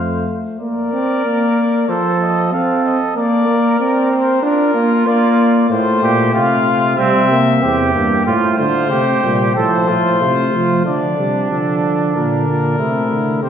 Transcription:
Already playing: bass trombone F2, trombone A3, flugelhorn C5, cornet F5
0.60 trombone A#3, flugelhorn A#4, cornet D5
0.93 trombone C4
1.25 trombone A#3
1.89 trombone F3, flugelhorn A4, cornet C5
2.21 cornet D#5
2.52 trombone C4, flugelhorn A4, cornet F5
2.86 cornet D#5
3.16 trombone A#3, flugelhorn A#4, cornet D5
3.48 trombone A#3
3.80 trombone C4, cornet D5
4.11 cornet C5
4.43 trombone D4, flugelhorn F4, cornet A#4
4.74 trombone A#3
5.07 trombone A#3, cornet D5
5.70 bass trombone A2, trombone A3, flugelhorn F4, cornet C5
6.02 bass trombone A#2, flugelhorn G4
6.34 bass trombone C3, flugelhorn F4, cornet F5
6.98 bass trombone C3, trombone G3, flugelhorn C4, cornet E5
7.30 trombone A#3
7.62 bass trombone E2, trombone C4, flugelhorn G4
7.94 bass trombone G2, trombone A#3
8.26 bass trombone A2, trombone A3, flugelhorn F4, cornet C5
8.59 bass trombone D3, flugelhorn F4
8.91 bass trombone C3, trombone A3, flugelhorn G4
9.24 bass trombone A#2, trombone G3
9.56 bass trombone A2, trombone F3, flugelhorn A4, cornet C5
9.88 bass trombone A2, flugelhorn F4
10.20 bass trombone C3, trombone A3, flugelhorn F4
10.54 bass trombone F3
10.86 bass trombone D3, trombone F3, flugelhorn D4, cornet D5
11.18 bass trombone C3, trombone G3
11.51 bass trombone D3, trombone F3, cornet A4
12.16 bass trombone A#2, trombone D3, cornet A#4
12.48 bass trombone A#2
12.78 bass trombone C3, trombone A3, flugelhorn E4
13.11 bass trombone D3
13.43 bass trombone C3, trombone C4, flugelhorn G4, cornet C5

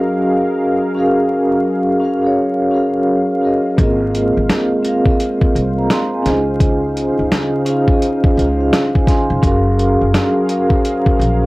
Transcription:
Already playing: analog synth pad F#3 G#4 A#4 F5, vibraphone C#4 F#4 G#4 A#4 D#5 F5
0.95 vibraphone C#4 F#4 G#4 A#4
1.00 vibraphone F5
2.00 vibraphone C#4 F#4 G#4 A#4
2.05 vibraphone F5
2.22 vibraphone C#4 F#4 G#4 A#4
2.26 vibraphone C#5
2.71 vibraphone C#4 F#4 G#4 A#4
2.76 vibraphone F5
3.41 vibraphone C#4 F#4 G#4 A#4
3.46 vibraphone D#5
3.77 upright bass G#1, analog synth pad G#3 C5, vibraphone A#3 F4 G#4, kick, closed hi-hat
3.81 vibraphone C4 A#4 D#5
4.15 closed hi-hat
4.37 upright bass G#1
4.49 snare, closed hi-hat
4.83 vibraphone C4 F4 G#4, closed hi-hat
4.87 vibraphone A#4 F5
5.05 vibraphone C4 F4 G#4 A#4, kick
5.11 vibraphone D#5
5.20 closed hi-hat
5.41 kick
5.55 upright bass C2, closed hi-hat
5.78 vibraphone F5 A#5
5.90 vibraphone F5 C6, snare, closed hi-hat
6.14 vibraphone D#5 G#5
6.23 upright bass C#2, analog synth pad C#3 D#4, vibraphone C#4 D#4 G#4 C5, snare, closed hi-hat
6.28 vibraphone F4 D#5
6.60 kick, closed hi-hat
6.97 closed hi-hat
7.19 upright bass C#2
7.32 snare, closed hi-hat
7.65 vibraphone C#4 F4 G#4 C5, closed hi-hat
7.70 vibraphone F5
7.88 vibraphone C#4 F4 G#4 C5, kick
7.93 vibraphone D#5
8.02 closed hi-hat
8.24 kick
8.35 upright bass C#2, vibraphone C#4 F4 G#4 C5 D#5, closed hi-hat
8.40 vibraphone F5
8.60 vibraphone F5
8.73 vibraphone C5 F5, snare, closed hi-hat
8.95 vibraphone D#5 G#5, kick
9.07 vibraphone F5 G#5 C6, kick, snare, closed hi-hat
9.30 upright bass F1, vibraphone F5 C6
9.42 upright bass F#1, analog synth pad F#3 G#4 A#4 F5, vibraphone C#4 F#4 G#4 A#4, kick, closed hi-hat
9.47 vibraphone F5
9.79 closed hi-hat
10.01 upright bass F#1
10.14 snare, closed hi-hat
10.46 vibraphone C#4 F#4 G#4, closed hi-hat
10.51 vibraphone A#4 F5
10.69 vibraphone C#4 F#4 G#4 A#4, kick
10.73 vibraphone C5
10.85 closed hi-hat
11.06 kick
11.17 upright bass A#1, vibraphone C#4 F#4 G#4 A#4
11.21 vibraphone F5, closed hi-hat

